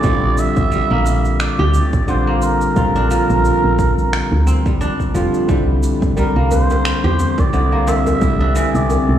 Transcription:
Already playing: kora C4 D4, muted trumpet D5
0.02 fm bass A#1, tine electric piano D3 G3 C4 F4, kora G3, kick, cabasa
0.38 muted trumpet E5, cabasa
0.57 fm bass A#1, kick, cabasa
0.71 kora G3, cabasa
0.91 fm bass A#1, kora A#3
1.06 cabasa
1.25 cabasa
1.40 muted trumpet D5, finger snap, cabasa
1.59 fm bass D2, kora G4
1.74 cabasa
1.93 fm bass A#1, kick, cabasa
2.07 tine electric piano D3 G3 C4 F4, kora D3, muted trumpet C5, cabasa
2.27 kora A#3
2.42 muted trumpet A#4, cabasa
2.61 cabasa
2.74 fm bass A#1, tine electric piano D3 G3 C4 F4, kora F4, kick, cabasa
2.95 kora D4, cabasa
3.11 kora F3, cabasa
3.30 fm bass A#1, cabasa
3.45 cabasa
3.64 fm bass A#1
3.79 kick, cabasa
3.98 cabasa
4.13 finger snap, cabasa
4.32 fm bass D2
4.47 kora C4, cabasa
4.66 kora G3, kick, cabasa
4.81 kora D4, cabasa
5.00 kick, cabasa
5.14 fm bass F1, tine electric piano D3 G3 C4 F4, kora F3, cabasa
5.34 cabasa
5.47 fm bass C2, tine electric piano D3 G3 C4, kora G3, ambient pad C4, kick, cabasa
5.51 tine electric piano E4
5.83 cabasa
6.02 fm bass C2, ambient pad G4, kick, cabasa
6.17 kora G3, muted trumpet A#4, djembe tone, cabasa
6.36 fm bass C2, kora A#3
6.51 muted trumpet C5, djembe bass, cabasa
6.58 ambient pad D5
6.70 djembe tone, cabasa
6.85 finger snap, cabasa
6.92 ambient pad E5
7.04 fm bass E2, kora G4
7.19 djembe slap, cabasa
7.38 fm bass C2, muted trumpet D5, kick, djembe slap, cabasa
7.53 tine electric piano D3 G3 C4 E4, kora D3, cabasa
7.72 kora A#3
7.88 muted trumpet E5, djembe slap, djembe tone, cabasa
8.07 djembe bass, cabasa
8.20 fm bass C2, tine electric piano D3 G3 C4, kora E4, kick, cabasa
8.24 tine electric piano E4
8.40 kora D4
8.56 kora E3, cabasa
8.75 fm bass C2, muted trumpet D5, cabasa
8.90 djembe tone, cabasa
9.09 fm bass C2

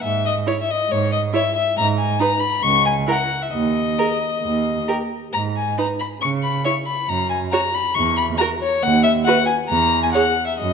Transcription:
0.02 cello G#2, violin E5
0.26 violin D#5
0.46 viola E4, violin C#5
0.61 violin E5
0.70 violin D#5
0.89 cello G#2, violin C#5
1.12 violin D#5
1.33 viola E4, violin C#5 E5
1.56 violin E5
1.76 cello G#2, violin A#5
1.98 violin G#5
2.19 viola D#4, violin B4 A#5
2.39 violin B5
2.63 cello C#2, violin C#6
2.86 violin G#5
3.07 viola E4, violin A#4 F#5
3.42 violin E5
3.52 cello D#2, violin D#5
3.98 viola G#4, violin A#4
4.42 cello D#2
4.88 viola G4, violin A#4
5.32 cello G#2, violin A#5
5.57 violin G#5
5.78 viola D#4, violin B4 A#5
5.99 violin B5
6.21 cello C#3, violin C#6
6.43 violin B5
6.65 viola E4, violin C#5 C#6
6.86 violin B5
7.08 cello F#2, violin A#5
7.30 violin G#5
7.52 viola F#4, violin C#5 A#5
7.74 violin B5
7.94 cello E2, violin C#6
8.17 violin B5
8.38 viola F#4, violin A#4 A#5
8.62 violin C#5
8.83 cello D#2, violin F#5
9.03 violin E5
9.25 viola F#4, violin B4 F#5
9.46 violin G#5
9.68 cello E2, violin A#5
10.03 violin G#5
10.12 viola G#4, violin C#5 F#5
10.46 violin E5
10.58 cello F#2, violin D#5

